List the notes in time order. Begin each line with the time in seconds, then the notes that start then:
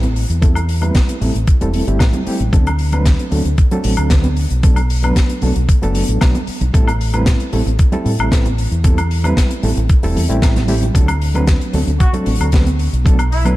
Already playing: A1
0.03 closed hi-hat, high conga
0.16 open hi-hat
0.29 E2, closed hi-hat
0.41 G3 A3 C4 E4 A4, kick, closed hi-hat, high conga
0.55 closed hi-hat, high woodblock
0.69 open hi-hat
0.81 G3 A3 C4 E4 B4, closed hi-hat, high conga, low conga, high woodblock
0.95 kick, snare, closed hi-hat
1.09 closed hi-hat
1.21 A1 G3 A3 C4 E4 A4, open hi-hat, high conga
1.35 A1, closed hi-hat
1.47 kick, closed hi-hat
1.61 E1 G3 A3 C4 E4 A4, closed hi-hat
1.74 open hi-hat, high conga
1.87 G1 G3 A3 C4 E4 G4, closed hi-hat
1.99 A1, kick, snare, closed hi-hat, high woodblock
2.13 closed hi-hat, high conga, low conga
2.26 G3 A3 C4 E4 G4, muted fingered electric bass stroke, open hi-hat
2.40 A1, closed hi-hat, low conga
2.53 D2 F#3 A3 C4 D4 A4, kick, closed hi-hat, high conga
2.67 closed hi-hat, high woodblock
2.79 open hi-hat
2.92 F#3 A3 C4 D4 B4, closed hi-hat, high conga, low conga, high woodblock
3.05 kick, snare, closed hi-hat
3.19 closed hi-hat
3.31 D2 F#3 A3 C4 D4 A4, open hi-hat, high conga
3.45 D2, closed hi-hat
3.58 kick, closed hi-hat
3.71 F#3 A3 C4 D4 A4, closed hi-hat, low conga
3.84 A1, open hi-hat, high conga
3.97 D2, closed hi-hat, high woodblock
4.10 F#3 A3 C4 D4 B4, kick, snare, closed hi-hat
4.24 closed hi-hat, high conga
4.37 open hi-hat
4.50 B1, closed hi-hat
4.63 F#3 A3 B3 D4 A4, kick, closed hi-hat, high conga
4.76 closed hi-hat, high woodblock
4.90 open hi-hat
5.03 F#3 A3 B3 D4 B4, closed hi-hat, high conga, low conga, high woodblock
5.16 kick, snare, closed hi-hat
5.29 closed hi-hat
5.42 B1 F#3 A3 B3 D4 A4, open hi-hat, high conga
5.56 B1, closed hi-hat
5.69 kick, closed hi-hat
5.82 F#1 F#3 A3 B3 D4 A4, closed hi-hat
5.95 open hi-hat, high conga
6.08 A1, closed hi-hat
6.21 B1 F#3 A3 B3 D4 B4, kick, snare, closed hi-hat, high woodblock
6.34 closed hi-hat, high conga, low conga
6.47 muted fingered electric bass stroke, open hi-hat
6.61 B1, closed hi-hat, low conga
6.74 A1 G3 A3 C4 E4 A4, kick, closed hi-hat, high conga
6.88 closed hi-hat, high woodblock
7.01 open hi-hat
7.13 G3 A3 C4 E4 B4, closed hi-hat, high conga, low conga, high woodblock
7.26 kick, snare, closed hi-hat
7.40 closed hi-hat
7.52 A1 G3 A3 C4 E4 A4, open hi-hat, high conga
7.66 A1, closed hi-hat
7.79 kick, closed hi-hat
7.92 G3 A3 C4 E4 A4, closed hi-hat, low conga
8.05 A2, open hi-hat, high conga
8.19 A1, closed hi-hat, high woodblock
8.32 G3 A3 C4 E4 B4, kick, snare, closed hi-hat
8.45 closed hi-hat, high conga
8.58 open hi-hat
8.71 E2, closed hi-hat
8.84 G3 A3 C4 E4 A4, kick, closed hi-hat, high conga
8.98 closed hi-hat, high woodblock
9.11 open hi-hat
9.24 G3 A3 C4 E4 B4, closed hi-hat, high conga, low conga, high woodblock
9.37 kick, snare, closed hi-hat
9.51 closed hi-hat
9.63 A1 G3 A3 C4 E4 A4, open hi-hat, high conga
9.77 A1, closed hi-hat
9.89 kick, closed hi-hat
10.03 E1 G3 A3 C4 E4 A4, open hi-hat
10.15 E2, open hi-hat, high conga
10.29 A1 G3 A3 C4 E4 G4, closed hi-hat
10.42 kick, snare, closed hi-hat, high woodblock
10.56 snare, closed hi-hat, high conga, low conga
10.68 G3 A3 C4 E4 G4, open hi-hat
10.83 closed hi-hat, low conga
10.94 D2 F#3 A3 C4 D4 A4, kick, closed hi-hat, high conga
11.08 closed hi-hat, high woodblock
11.22 open hi-hat
11.34 F#3 A3 C4 D4 B4, closed hi-hat, high conga, low conga, high woodblock
11.47 kick, snare, closed hi-hat
11.61 closed hi-hat
11.73 D2 F#3 A3 C4 D4 A4, open hi-hat, high conga
11.87 D2, closed hi-hat
12.00 F#4, kick, closed hi-hat
12.13 F#3 A3 C4 D4 A4, closed hi-hat, low conga
12.26 A1, open hi-hat, high conga
12.40 D2, closed hi-hat, high woodblock
12.52 F#3 A3 C4 D4 B4, kick, snare, closed hi-hat
12.66 closed hi-hat, high conga
12.79 open hi-hat
12.93 B1, closed hi-hat
13.05 F#3 A3 B3 D4 A4, kick, closed hi-hat, high conga
13.19 closed hi-hat, high woodblock
13.32 E4, open hi-hat
13.45 F#3 A3 B3 D4 B4, closed hi-hat, high conga, low conga, high woodblock